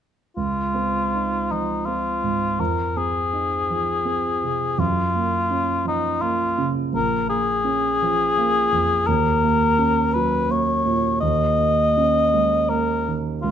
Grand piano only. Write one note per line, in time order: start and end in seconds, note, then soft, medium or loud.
0.37 2.56 C#2 soft
0.74 1.36 C4 soft
1.15 1.73 D#4 soft
1.51 2.09 F3 soft
1.87 2.45 C4 soft
2.23 2.60 G#2 soft
2.59 4.75 F2 soft
2.96 3.55 C4 soft
3.33 3.92 D#4 soft
3.70 4.28 F3 soft
4.05 4.64 C4 soft
4.44 4.79 C3 soft
4.78 6.91 F#2 soft
5.15 5.72 A#3 soft
5.51 6.08 C#4 soft
5.85 6.44 F3 soft
6.22 6.80 A#3 soft
6.58 6.95 C#3 soft
6.93 9.03 A#1 soft
7.28 7.86 A#3 soft
7.65 8.22 C#4 soft
8.02 8.58 F3 soft
8.37 8.94 A#3 soft
8.72 9.08 F2 soft
9.08 11.18 D#2 soft
9.43 10.00 A#3 soft
9.79 10.35 C#4 soft
10.16 10.72 F#3 soft
10.49 11.07 A#3 soft
10.86 11.22 A#2 soft
11.22 13.40 D#2 soft
11.58 12.18 A#3 soft
11.97 12.56 C#4 soft
12.34 12.93 G#3 soft
12.70 13.29 A#3 soft
13.08 13.45 D#3 soft
13.44 13.51 C#2 soft